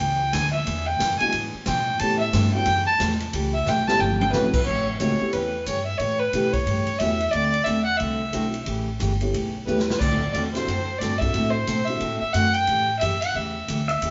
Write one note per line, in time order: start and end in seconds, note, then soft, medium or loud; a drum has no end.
0.00 0.32 C#2 medium
0.00 0.20 E3 medium
0.00 0.20 B3 medium
0.00 0.21 D4 medium
0.00 0.21 G#4 medium
0.00 0.35 G5 medium
0.33 0.66 D2 loud
0.33 0.44 E3 medium
0.33 0.44 B3 medium
0.33 0.44 D4 medium
0.33 0.45 G#4 loud
0.33 0.53 G#5 loud
0.33 snare medium
0.33 hi-hat pedal medium
0.33 ride medium
0.53 0.88 E5 medium
0.67 0.99 E2 medium
0.67 0.87 E3 medium
0.67 0.87 B3 medium
0.67 0.87 D4 medium
0.67 0.88 G#4 medium
0.67 ride medium
0.86 1.19 G5 loud
0.99 1.19 F#2 loud
0.99 1.10 E3 medium
0.99 1.11 B3 medium
0.99 1.11 D4 medium
0.99 1.11 G#4 medium
0.99 snare medium
0.99 hi-hat pedal medium
0.99 ride medium
1.19 1.32 G#3 medium
1.19 1.32 B3 medium
1.19 1.32 D4 medium
1.19 1.32 E4 medium
1.19 1.33 F#4 medium
1.19 1.32 G#5 loud
1.19 muted upright bass stroke soft
1.19 ride soft
1.32 1.52 G#2 medium
1.32 1.54 E3 medium
1.32 1.54 B3 medium
1.32 1.54 D4 medium
1.32 1.54 G#4 medium
1.32 ride medium
1.54 muted upright bass stroke soft
1.66 1.99 B2 loud
1.66 1.77 E3 medium
1.66 1.78 B3 medium
1.66 1.78 D4 medium
1.66 1.78 G#4 medium
1.66 2.01 G5 loud
1.66 snare medium
1.66 hi-hat pedal medium
1.66 ride medium
2.00 2.32 A2 medium
2.00 2.21 C#3 medium
2.00 2.21 E3 medium
2.00 2.50 A3 medium
2.00 2.21 A3 medium
2.00 2.50 B3 medium
2.00 2.21 C#4 medium
2.00 2.50 C#4 medium
2.00 2.50 E4 medium
2.00 2.21 G4 medium
2.00 2.51 G4 medium
2.00 2.19 A5 loud
2.00 ride medium
2.19 2.51 E5 medium
2.33 2.66 G2 loud
2.33 2.44 C#3 medium
2.33 2.44 E3 medium
2.33 2.44 A3 medium
2.33 2.45 C#4 medium
2.33 2.45 G4 medium
2.33 snare medium
2.33 hi-hat pedal medium
2.33 ride medium
2.54 2.65 A3 medium
2.54 2.65 B3 medium
2.54 2.66 C#4 medium
2.54 2.66 E4 medium
2.54 2.66 F#4 medium
2.54 2.85 G5 loud
2.66 2.99 F#2 medium
2.66 2.87 C#3 medium
2.66 2.87 E3 medium
2.66 2.87 A3 medium
2.66 2.87 C#4 medium
2.66 2.87 G4 medium
2.66 ride medium
2.86 2.94 A5 loud
2.99 3.32 E2 medium
2.99 3.10 C#3 medium
2.99 3.11 E3 medium
2.99 3.11 A3 medium
2.99 3.11 C#4 medium
2.99 3.11 G4 medium
2.99 snare medium
2.99 hi-hat pedal medium
2.99 ride medium
3.20 ride medium
3.33 3.66 C#2 medium
3.33 3.54 C#3 medium
3.33 3.54 E3 medium
3.33 3.54 A3 medium
3.33 3.54 C#4 medium
3.33 3.54 G4 medium
3.33 ride medium
3.54 3.70 E5 loud
3.66 3.99 B1 medium
3.66 3.78 C#3 medium
3.66 3.78 E3 medium
3.66 3.78 A3 medium
3.66 3.78 C#4 medium
3.66 3.78 G4 medium
3.66 3.89 G5 medium
3.66 snare medium
3.66 hi-hat pedal medium
3.87 3.99 A3 medium
3.87 3.99 B3 medium
3.87 3.99 C#4 medium
3.87 3.99 E4 medium
3.87 3.99 G4 medium
3.87 4.02 A5 loud
3.87 snare medium
3.99 4.33 G1 medium
3.99 4.21 C#3 medium
3.99 4.21 E3 medium
3.99 4.21 A3 medium
3.99 4.21 C#4 medium
3.99 4.21 G4 medium
3.99 4.19 G5 medium
3.99 high tom medium
4.20 4.31 G5 medium
4.20 high tom loud
4.32 4.66 B1 medium
4.32 4.44 C#3 medium
4.32 4.44 E3 medium
4.32 4.45 A3 medium
4.32 4.52 A3 medium
4.32 4.52 B3 medium
4.32 4.45 C#4 medium
4.32 4.53 C#4 medium
4.32 4.53 E4 medium
4.32 4.53 F#4 medium
4.32 4.45 G4 medium
4.32 4.52 B4 medium
4.32 snare medium
4.32 hi-hat pedal medium
4.53 4.65 B4 medium
4.53 kick medium
4.53 crash medium
4.66 4.99 A1 medium
4.66 4.87 C#3 medium
4.66 4.88 E3 medium
4.66 4.88 A3 medium
4.66 4.88 C#4 medium
4.66 4.88 G4 medium
4.66 4.97 C#5 medium
4.99 5.19 C#2 medium
4.99 5.11 C#3 medium
4.99 5.11 E3 medium
4.99 5.18 G#3 medium
4.99 5.11 A3 medium
4.99 5.19 A#3 medium
4.99 5.19 C4 medium
4.99 5.12 C#4 medium
4.99 5.19 D#4 medium
4.99 5.19 F#4 medium
4.99 5.12 G4 medium
4.99 5.34 C#5 medium
4.99 hi-hat pedal medium
4.99 ride medium
5.20 5.50 A3 medium
5.20 5.50 B3 medium
5.20 5.50 C#4 medium
5.20 5.50 E4 medium
5.20 5.51 G4 medium
5.20 muted upright bass stroke soft
5.33 5.66 E2 medium
5.33 5.54 C#3 medium
5.33 5.55 E3 medium
5.33 5.55 A3 medium
5.33 5.55 C#4 medium
5.33 5.55 G4 medium
5.33 5.67 B4 medium
5.33 ride medium
5.66 5.99 G2 medium
5.66 5.78 C#3 medium
5.66 5.78 E3 medium
5.66 5.79 A3 medium
5.66 5.79 C#4 medium
5.66 5.79 G4 medium
5.66 5.85 C#5 medium
5.66 hi-hat pedal medium
5.66 ride medium
5.86 6.00 E5 medium
5.98 6.32 A2 medium
5.98 6.21 C#3 medium
5.98 6.21 E3 medium
5.98 6.21 A3 medium
5.98 6.22 C#4 medium
5.98 6.22 G4 medium
5.98 6.21 C#5 loud
5.98 ride medium
6.19 6.55 B4 medium
6.33 6.65 B2 medium
6.33 6.45 C#3 medium
6.33 6.45 E3 medium
6.33 6.52 A3 medium
6.33 6.45 A3 medium
6.33 6.52 B3 medium
6.33 6.53 C#4 medium
6.33 6.45 C#4 medium
6.33 6.53 E4 medium
6.33 6.53 G4 medium
6.33 6.46 G4 medium
6.33 hi-hat pedal medium
6.33 ride medium
6.53 7.00 C#5 medium
6.53 kick medium
6.53 ride soft
6.66 6.99 G2 medium
6.66 6.88 C#3 medium
6.66 6.88 E3 medium
6.66 6.88 A3 medium
6.66 6.89 C#4 medium
6.66 6.89 G4 medium
6.66 ride medium
6.87 ride soft
6.99 7.33 E2 medium
6.99 7.11 C#3 medium
6.99 7.12 E3 medium
6.99 7.19 A3 medium
6.99 7.12 A3 medium
6.99 7.19 B3 medium
6.99 7.19 C#4 medium
6.99 7.12 C#4 medium
6.99 7.19 E4 medium
6.99 7.20 F#4 medium
6.99 7.12 G4 medium
6.99 7.33 E5 loud
6.99 hi-hat pedal medium
6.99 ride medium
7.20 ride soft
7.31 7.66 D2 medium
7.31 7.55 D3 medium
7.31 7.55 A3 medium
7.31 7.55 C4 medium
7.31 7.55 F#4 medium
7.31 7.55 A4 medium
7.31 7.66 D5 loud
7.31 ride medium
7.54 ride soft
7.64 7.99 E2 medium
7.64 7.78 D3 medium
7.64 7.78 A3 medium
7.64 7.78 C4 medium
7.64 7.78 F#4 medium
7.64 7.78 A4 medium
7.64 7.84 E5 loud
7.64 hi-hat pedal medium
7.64 ride medium
7.85 7.99 F#5 medium
7.97 8.33 C2 medium
7.97 8.21 D3 medium
7.97 8.21 A3 medium
7.97 8.21 C4 medium
7.97 8.21 F#4 medium
7.97 8.21 A4 medium
7.97 8.66 E5 medium
7.97 ride medium
8.32 8.66 B1 medium
8.32 8.44 D3 medium
8.32 8.52 A3 medium
8.32 8.45 A3 medium
8.32 8.52 C4 medium
8.32 8.45 C4 medium
8.32 8.52 D4 medium
8.32 8.52 E4 medium
8.32 8.45 F#4 medium
8.32 8.53 F#4 medium
8.32 8.45 A4 medium
8.32 hi-hat pedal medium
8.32 ride medium
8.54 ride soft
8.66 9.00 A1 medium
8.66 8.88 C#3 medium
8.66 8.88 E3 medium
8.66 8.88 A3 medium
8.66 8.88 C#4 medium
8.66 8.88 G4 medium
8.66 ride medium
8.99 9.33 G1 medium
8.99 9.11 C#3 medium
8.99 9.11 E3 medium
8.99 9.12 A3 medium
8.99 9.12 C#4 medium
8.99 9.12 G4 medium
8.99 hi-hat pedal medium
8.99 ride medium
9.21 9.33 A3 medium
9.21 9.33 B3 medium
9.21 9.33 C#4 medium
9.21 9.33 E4 medium
9.21 9.33 G4 medium
9.21 ride soft
9.34 9.66 B1 medium
9.34 9.55 C#3 medium
9.34 9.55 E3 medium
9.34 9.55 A3 medium
9.34 9.55 C#4 medium
9.34 9.55 G4 medium
9.34 ride medium
9.66 10.00 E2 medium
9.66 9.78 C#3 medium
9.66 9.79 E3 medium
9.66 10.00 A3 medium
9.66 9.79 A3 medium
9.66 10.01 B3 medium
9.66 10.01 C#4 medium
9.66 9.79 C#4 medium
9.66 10.01 E4 medium
9.66 9.79 G4 medium
9.66 10.01 G4 medium
9.66 9.86 B4 medium
9.66 hi-hat pedal medium
9.79 snare medium
9.87 10.01 B4 medium
9.87 snare medium
9.99 10.33 D2 medium
9.99 10.21 D3 medium
9.99 10.22 A3 medium
9.99 10.22 C4 medium
9.99 10.22 F#4 medium
9.99 10.22 A4 medium
9.99 10.32 D5 loud
9.99 kick medium
9.99 crash medium
10.33 10.66 E2 medium
10.33 10.45 D3 medium
10.33 10.45 A3 medium
10.33 10.45 C4 medium
10.33 10.46 F#4 medium
10.33 10.46 A4 medium
10.33 10.42 D5 medium
10.33 hi-hat pedal soft
10.33 ride medium
10.53 10.66 A3 medium
10.53 10.66 C4 medium
10.53 10.66 D4 medium
10.53 10.67 E4 medium
10.53 10.67 F#4 medium
10.53 11.00 C5 medium
10.53 snare soft
10.53 ride soft
10.68 11.00 F#2 medium
10.68 10.89 D3 medium
10.68 10.89 A3 medium
10.68 10.89 C4 medium
10.68 10.89 F#4 medium
10.68 10.89 A4 medium
10.68 ride medium
10.98 11.33 G2 medium
10.98 11.12 D3 medium
10.98 11.12 A3 medium
10.98 11.12 C4 medium
10.98 11.13 F#4 medium
10.98 11.20 D5 medium
10.98 snare soft
10.98 hi-hat pedal medium
10.98 ride medium
11.03 11.13 A4 medium
11.18 11.65 A3 medium
11.18 11.65 C4 medium
11.18 11.65 D4 medium
11.18 11.65 E4 medium
11.18 11.52 E5 loud
11.18 kick medium
11.18 ride soft
11.23 11.66 F#4 medium
11.34 11.67 A2 medium
11.34 11.55 D3 medium
11.34 11.55 A3 medium
11.34 11.55 C4 medium
11.34 11.55 F#4 medium
11.34 11.56 A4 medium
11.34 ride medium
11.51 11.87 C5 loud
11.67 12.00 B2 medium
11.67 11.78 D3 medium
11.67 11.79 A3 medium
11.67 11.79 C4 medium
11.67 11.79 F#4 medium
11.67 11.79 A4 medium
11.67 hi-hat pedal medium
11.67 ride medium
11.85 12.00 A3 medium
11.85 12.00 C4 medium
11.85 12.00 D4 medium
11.85 12.00 E4 medium
11.85 12.00 F#4 medium
11.85 12.18 E5 loud
11.85 ride soft
12.00 12.20 A2 medium
12.00 12.21 D3 medium
12.00 12.21 A3 medium
12.00 12.22 C4 medium
12.00 12.22 F#4 medium
12.00 12.22 A4 medium
12.00 ride medium
12.19 12.35 E5 loud
12.19 muted upright bass stroke soft
12.33 12.67 F#2 medium
12.33 12.45 D3 medium
12.33 12.45 A3 medium
12.33 12.46 C4 medium
12.33 12.46 F#4 medium
12.33 12.46 A4 medium
12.33 12.55 F#5 loud
12.33 hi-hat pedal medium
12.33 ride medium
12.54 12.99 G5 loud
12.54 ride soft
12.67 13.00 A2 medium
12.67 12.88 C#3 medium
12.67 12.89 E3 medium
12.67 12.89 A3 medium
12.67 12.89 C#4 medium
12.67 12.89 G4 medium
12.67 ride medium
13.00 13.34 F#2 medium
13.00 13.12 C#3 medium
13.00 13.12 E3 medium
13.00 13.12 A3 medium
13.00 13.13 C#4 medium
13.00 13.13 G4 medium
13.00 13.23 E5 loud
13.00 hi-hat pedal soft
13.00 ride medium
13.21 13.37 F#5 medium
13.21 ride medium
13.34 13.67 E2 medium
13.34 13.55 C#3 medium
13.34 13.55 E3 medium
13.34 13.55 A3 medium
13.34 13.55 C#4 medium
13.34 13.56 G4 medium
13.34 14.02 E5 medium
13.68 14.00 D2 medium
13.68 13.79 C#3 medium
13.68 13.79 E3 medium
13.68 13.79 A3 medium
13.68 13.80 C#4 medium
13.68 13.80 G4 medium
13.68 hi-hat pedal medium
13.68 ride medium
13.88 14.10 E5 medium
13.88 ride medium
14.02 14.10 E2 medium
14.02 14.10 C#3 medium
14.02 14.10 E3 medium
14.02 14.10 A3 medium
14.02 14.10 C#4 medium
14.02 14.10 G4 medium
14.02 ride medium